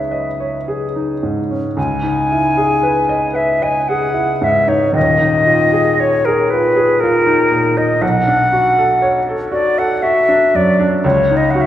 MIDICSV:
0, 0, Header, 1, 3, 480
1, 0, Start_track
1, 0, Tempo, 1117318
1, 759, Time_signature, 3, 2, 24, 8
1, 759, Tempo, 1058201
1, 2679, Tempo, 1008403
1, 5375, End_track
2, 0, Start_track
2, 0, Title_t, "Flute"
2, 0, Program_c, 0, 73
2, 0, Note_on_c, 0, 76, 50
2, 283, Note_off_c, 0, 76, 0
2, 760, Note_on_c, 0, 80, 73
2, 1479, Note_on_c, 0, 76, 63
2, 1486, Note_off_c, 0, 80, 0
2, 1604, Note_on_c, 0, 80, 71
2, 1610, Note_off_c, 0, 76, 0
2, 1718, Note_on_c, 0, 78, 73
2, 1725, Note_off_c, 0, 80, 0
2, 1971, Note_on_c, 0, 76, 67
2, 1978, Note_off_c, 0, 78, 0
2, 2083, Note_on_c, 0, 73, 64
2, 2090, Note_off_c, 0, 76, 0
2, 2202, Note_off_c, 0, 73, 0
2, 2205, Note_on_c, 0, 75, 78
2, 2680, Note_on_c, 0, 73, 74
2, 2687, Note_off_c, 0, 75, 0
2, 2799, Note_on_c, 0, 70, 67
2, 2806, Note_off_c, 0, 73, 0
2, 2917, Note_on_c, 0, 71, 71
2, 2925, Note_off_c, 0, 70, 0
2, 3156, Note_on_c, 0, 70, 78
2, 3163, Note_off_c, 0, 71, 0
2, 3524, Note_on_c, 0, 75, 68
2, 3531, Note_off_c, 0, 70, 0
2, 3640, Note_on_c, 0, 78, 86
2, 3647, Note_off_c, 0, 75, 0
2, 4232, Note_off_c, 0, 78, 0
2, 4354, Note_on_c, 0, 74, 76
2, 4481, Note_on_c, 0, 78, 83
2, 4488, Note_off_c, 0, 74, 0
2, 4595, Note_on_c, 0, 76, 80
2, 4603, Note_off_c, 0, 78, 0
2, 4848, Note_on_c, 0, 74, 77
2, 4855, Note_off_c, 0, 76, 0
2, 5000, Note_off_c, 0, 74, 0
2, 5083, Note_on_c, 0, 73, 78
2, 5234, Note_on_c, 0, 75, 70
2, 5241, Note_off_c, 0, 73, 0
2, 5300, Note_on_c, 0, 78, 58
2, 5307, Note_off_c, 0, 75, 0
2, 5349, Note_on_c, 0, 76, 63
2, 5356, Note_off_c, 0, 78, 0
2, 5375, Note_off_c, 0, 76, 0
2, 5375, End_track
3, 0, Start_track
3, 0, Title_t, "Grand piano"
3, 0, Program_c, 1, 0
3, 0, Control_c, 1, 64, 127
3, 0, Note_on_c, 1, 37, 36
3, 0, Note_on_c, 1, 61, 31
3, 0, Note_on_c, 1, 63, 27
3, 0, Note_on_c, 1, 68, 31
3, 0, Note_on_c, 1, 71, 33
3, 0, Note_on_c, 1, 73, 30
3, 49, Note_on_c, 1, 75, 33
3, 116, Note_off_c, 1, 73, 0
3, 173, Note_on_c, 1, 73, 31
3, 238, Note_off_c, 1, 75, 0
3, 293, Note_off_c, 1, 68, 0
3, 293, Note_on_c, 1, 68, 33
3, 360, Note_off_c, 1, 73, 0
3, 413, Note_off_c, 1, 63, 0
3, 413, Note_on_c, 1, 63, 31
3, 481, Note_off_c, 1, 68, 0
3, 529, Note_on_c, 1, 44, 26
3, 601, Note_off_c, 1, 63, 0
3, 647, Note_off_c, 1, 61, 0
3, 647, Note_on_c, 1, 61, 28
3, 716, Note_off_c, 1, 44, 0
3, 745, Note_off_c, 1, 37, 0
3, 760, Note_on_c, 1, 37, 47
3, 761, Note_off_c, 1, 61, 0
3, 768, Control_c, 1, 64, 0
3, 769, Note_off_c, 1, 71, 0
3, 853, Control_c, 1, 64, 127
3, 878, Note_on_c, 1, 63, 43
3, 1008, Note_on_c, 1, 64, 42
3, 1073, Note_off_c, 1, 63, 0
3, 1125, Note_on_c, 1, 68, 45
3, 1198, Note_off_c, 1, 64, 0
3, 1242, Note_on_c, 1, 71, 48
3, 1315, Note_off_c, 1, 68, 0
3, 1360, Note_on_c, 1, 75, 42
3, 1434, Note_off_c, 1, 71, 0
3, 1470, Note_on_c, 1, 71, 42
3, 1552, Note_off_c, 1, 75, 0
3, 1600, Note_on_c, 1, 75, 46
3, 1668, Note_off_c, 1, 71, 0
3, 1725, Note_on_c, 1, 68, 47
3, 1794, Note_off_c, 1, 75, 0
3, 1834, Note_on_c, 1, 64, 46
3, 1918, Note_off_c, 1, 68, 0
3, 1961, Note_on_c, 1, 44, 42
3, 2034, Note_off_c, 1, 64, 0
3, 2079, Note_on_c, 1, 63, 45
3, 2156, Note_off_c, 1, 44, 0
3, 2189, Note_off_c, 1, 37, 0
3, 2190, Note_on_c, 1, 27, 49
3, 2198, Note_on_c, 1, 39, 52
3, 2203, Note_off_c, 1, 63, 0
3, 2215, Control_c, 1, 64, 0
3, 2294, Control_c, 1, 64, 127
3, 2320, Note_on_c, 1, 63, 44
3, 2436, Note_on_c, 1, 65, 43
3, 2511, Note_off_c, 1, 63, 0
3, 2553, Note_on_c, 1, 68, 47
3, 2629, Note_off_c, 1, 65, 0
3, 2678, Note_on_c, 1, 73, 46
3, 2750, Note_off_c, 1, 68, 0
3, 2805, Note_on_c, 1, 68, 46
3, 2876, Note_off_c, 1, 73, 0
3, 2932, Note_on_c, 1, 65, 41
3, 2999, Note_off_c, 1, 68, 0
3, 3043, Note_on_c, 1, 68, 47
3, 3121, Note_off_c, 1, 65, 0
3, 3172, Note_on_c, 1, 65, 52
3, 3235, Note_off_c, 1, 68, 0
3, 3281, Note_on_c, 1, 63, 47
3, 3359, Note_off_c, 1, 65, 0
3, 3401, Note_on_c, 1, 46, 42
3, 3473, Note_off_c, 1, 63, 0
3, 3521, Note_on_c, 1, 63, 49
3, 3594, Note_off_c, 1, 46, 0
3, 3616, Note_off_c, 1, 27, 0
3, 3620, Note_off_c, 1, 39, 0
3, 3639, Note_on_c, 1, 35, 57
3, 3642, Note_off_c, 1, 63, 0
3, 3650, Control_c, 1, 64, 0
3, 3718, Control_c, 1, 64, 127
3, 3762, Note_on_c, 1, 62, 47
3, 3881, Note_on_c, 1, 66, 44
3, 3957, Note_off_c, 1, 62, 0
3, 4005, Note_on_c, 1, 69, 50
3, 4075, Note_off_c, 1, 66, 0
3, 4117, Note_on_c, 1, 73, 53
3, 4195, Note_off_c, 1, 69, 0
3, 4245, Note_on_c, 1, 69, 45
3, 4310, Note_off_c, 1, 73, 0
3, 4353, Note_on_c, 1, 66, 48
3, 4434, Note_off_c, 1, 69, 0
3, 4482, Note_on_c, 1, 69, 52
3, 4549, Note_off_c, 1, 66, 0
3, 4597, Note_on_c, 1, 66, 55
3, 4675, Note_off_c, 1, 69, 0
3, 4719, Note_on_c, 1, 62, 49
3, 4793, Note_off_c, 1, 66, 0
3, 4843, Note_on_c, 1, 42, 45
3, 4913, Note_off_c, 1, 62, 0
3, 4962, Note_on_c, 1, 62, 49
3, 5033, Note_off_c, 1, 42, 0
3, 5059, Note_off_c, 1, 35, 0
3, 5080, Note_on_c, 1, 37, 62
3, 5081, Note_off_c, 1, 62, 0
3, 5088, Control_c, 1, 64, 0
3, 5161, Control_c, 1, 64, 127
3, 5206, Note_on_c, 1, 63, 52
3, 5321, Note_on_c, 1, 66, 54
3, 5375, Note_off_c, 1, 37, 0
3, 5375, Note_off_c, 1, 63, 0
3, 5375, Note_off_c, 1, 66, 0
3, 5375, End_track
0, 0, End_of_file